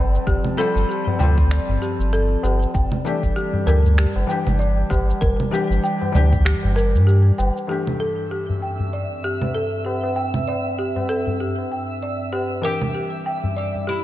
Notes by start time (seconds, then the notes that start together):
Already playing: G1 F3 G3 C4 F4 A4 D5 A5
0.15 tabla na, shaker
0.27 G1 G4, kick, shaker
0.45 low conga
0.57 G3 C4 F4 A4, tabla na, tabla tin, shaker
0.76 G1, shaker
0.89 G4, shaker
1.07 tabla na, tabla ge
1.19 D2 G3 C4 F4 G5, low conga, shaker
1.23 A4
1.38 kick, shaker
1.51 D5, finger snap, shaker
1.69 G1, tabla ge
1.82 G4, tabla tin, shaker
1.99 G1, shaker
2.13 A4, shaker
2.43 G1 G4, tabla na, shaker
2.62 shaker
2.74 G1 G3 G5, kick, shaker
2.92 low conga
3.05 E3 A3 D4 G4 D5, shaker
3.23 G1, kick, shaker
3.36 G4, shaker
3.53 tabla ge
3.66 D2 E3 A3 D4 G4 A#4, shaker
3.85 tabla ge, shaker
3.98 G4, finger snap, shaker
4.16 G1, tabla na
4.27 E3 D4 G4 G5, shaker
4.47 G1, tabla tin, low conga, shaker
4.59 D5, shaker
4.90 G1 G4, kick, tabla na, shaker
5.09 tabla na, shaker
5.21 G1 A#4, kick, shaker
5.40 low conga
5.51 E3 D4 G4, tabla na, tabla tin, shaker
5.70 G1, shaker
5.84 G5, shaker
6.01 tabla na, tabla ge
6.12 D2 E3 D4 G4 D5, low conga, shaker
6.32 kick, tabla ge, shaker
6.45 G4, finger snap, shaker
6.63 G1, tabla na, tabla ge
6.76 A#4, tabla tin, shaker
6.95 G2, shaker
7.07 G4, shaker
7.38 G1 G5, tabla na, shaker
7.56 tabla tin, shaker
7.67 G2 E3 A3 D4 G4 E5
7.87 low conga
8.00 A4, tabla tin
8.31 G4
8.38 C4
8.50 tabla ge
8.62 G5
8.80 tabla ge
8.88 E5
8.93 D5
9.24 G4
9.42 tabla tin, low conga
9.55 A4
9.85 G4, tabla na
10.03 tabla na
10.16 G5
10.34 low conga
10.48 D5, tabla na, tabla tin
10.79 G4
10.96 tabla na, tabla ge
11.09 A4
11.27 tabla ge
11.40 G4
11.58 tabla na
11.72 G5
12.03 D5
12.33 G4, tabla na
12.50 tabla tin
12.62 E3 G3 D4 G4 A#4
12.66 G4
12.82 low conga
12.95 G4, tabla tin
13.07 D5
13.20 D4
13.26 G5
13.44 tabla ge
13.57 D5
13.75 tabla ge
13.84 G4 A5
13.89 E4